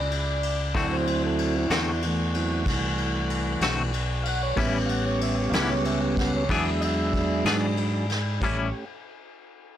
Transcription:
0.00 0.72 C#2 medium
0.00 0.71 E4 medium
0.00 0.71 G#4 medium
0.00 0.88 D5 medium
0.00 4.54 D5 medium
0.11 ride medium
0.43 ride medium
0.75 1.68 D2 medium
0.75 0.94 D3 medium
0.75 1.67 F#3 medium
0.75 0.94 A3 medium
0.75 0.95 C4 medium
0.75 1.67 C4 medium
0.75 1.57 E4 medium
0.75 4.55 F#4 medium
0.75 0.95 F#4 medium
0.75 2.49 C5 medium
0.75 kick loud
0.75 ride medium
0.93 1.23 C5 loud
1.07 ride medium
1.26 1.55 A4 medium
1.39 ride medium
1.58 2.03 E4 loud
1.70 2.63 E2 loud
1.70 1.91 D3 medium
1.70 1.91 A3 medium
1.70 1.90 C4 medium
1.70 1.90 F#4 medium
1.70 snare loud
1.70 ride medium
2.02 3.92 E3 medium
2.02 ride medium
2.07 3.92 A3 loud
2.34 2.63 F#3 soft
2.34 2.63 C4 medium
2.34 2.64 E4 medium
2.34 ride medium
2.66 3.59 C2 medium
2.66 4.55 B4 medium
2.66 kick medium
2.66 ride medium
2.98 ride medium
3.30 ride medium
3.61 4.54 B1 medium
3.61 3.82 D3 medium
3.61 3.82 A3 medium
3.61 3.82 C4 medium
3.61 3.82 F#4 medium
3.61 snare loud
3.61 ride medium
3.94 ride medium
4.24 4.27 F5 medium
4.24 ride medium
4.28 4.42 F#5 loud
4.43 4.57 C#5 loud
4.56 5.50 A1 medium
4.56 4.77 A2 medium
4.56 6.45 G3 medium
4.56 4.77 G3 medium
4.56 6.45 B3 medium
4.56 6.45 C#4 medium
4.56 4.77 C#4 medium
4.56 4.78 E4 medium
4.56 6.47 G4 medium
4.56 6.47 A4 medium
4.56 6.47 C#5 medium
4.56 4.73 E5 loud
4.56 kick loud
4.56 ride medium
4.86 4.90 F5 medium
4.86 ride medium
4.90 5.05 F#5 medium
5.07 5.21 C#5 medium
5.21 5.37 E5 loud
5.21 ride medium
5.50 6.46 C#2 loud
5.50 5.54 F5 medium
5.50 ride medium
5.54 5.74 A2 medium
5.54 5.74 G3 medium
5.54 5.74 C#4 medium
5.54 5.73 E4 medium
5.54 5.69 F#5 loud
5.54 snare loud
5.70 5.85 C#5 loud
5.85 6.01 E5 medium
5.85 ride medium
6.17 6.33 F#5 loud
6.17 kick medium
6.17 snare soft
6.17 ride medium
6.36 6.50 C#5 medium
6.49 7.42 E2 medium
6.49 6.69 E3 medium
6.49 7.77 F#3 medium
6.49 7.76 G#3 medium
6.49 6.69 B3 medium
6.49 7.77 D4 medium
6.49 6.70 D4 medium
6.49 8.39 E4 medium
6.49 8.39 G#4 medium
6.49 6.70 G#4 medium
6.49 8.40 D5 loud
6.49 6.82 E5 medium
6.49 kick medium
6.49 ride medium
6.81 6.84 D#5 medium
6.81 ride medium
6.85 7.45 E5 loud
7.13 kick medium
7.13 ride medium
7.45 8.38 G#2 medium
7.45 7.66 E3 medium
7.45 7.65 B3 medium
7.45 7.65 D4 medium
7.45 7.65 G#4 medium
7.45 snare loud
7.45 ride medium
7.77 8.06 F#3 medium
7.77 8.06 G#3 soft
7.77 8.07 D4 medium
7.77 ride medium
8.09 snare soft
8.09 ride medium
8.40 8.71 A1 medium
8.40 8.68 A2 medium
8.40 8.68 G3 medium
8.40 8.85 A3 medium
8.40 8.85 C#4 medium
8.40 8.86 G4 medium
8.40 8.72 G4 medium
8.40 8.71 A4 medium
8.40 8.71 C#5 medium
8.40 kick loud
8.40 crash medium
8.44 8.68 C#4 medium
8.44 8.69 E4 medium

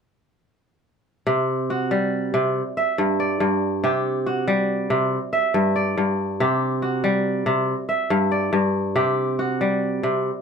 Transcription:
1.27 2.33 C3 medium
1.70 3.04 F#4 medium
1.91 2.60 G3 medium
2.34 2.60 C3 medium
2.77 3.80 E5 medium
2.98 3.39 G2 medium
3.20 4.30 D5 medium
3.40 3.88 G2 medium
3.84 4.89 C3 medium
3.84 5.25 G4 medium
4.26 5.60 F#4 medium
4.48 5.16 G3 medium
4.90 5.16 C3 medium
5.33 6.36 E5 medium
5.54 5.96 G2 medium
5.76 6.86 D5 medium
5.97 6.44 G2 medium
6.40 7.45 C3 medium
6.40 7.82 G4 medium
6.82 8.16 F#4 soft
7.04 7.73 G3 medium
7.46 7.73 C3 medium
7.89 8.92 E5 medium
8.10 8.51 G2 medium
8.32 9.42 D5 medium
8.53 9.01 G2 medium
8.96 10.02 C3 medium
8.96 10.37 G4 medium
9.39 10.42 F#4 medium
9.61 10.29 G3 medium
10.03 10.29 C3 medium

